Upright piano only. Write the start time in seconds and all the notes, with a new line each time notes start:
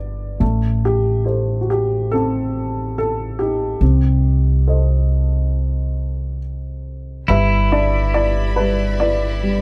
Already playing: G3 D4 F#4 B4 D5
0.40 A3
0.85 G4
1.25 G4 A4 C5
1.61 F#4
1.70 G4
2.11 C4 A4
2.98 A4
3.39 D#4 G4
3.82 C4
4.67 A4 C5 D#5
7.29 G3 B4 E5
7.72 D4 D5
8.14 E4 D5
8.56 G3 B4
9.00 E4 B4 D5
9.43 G3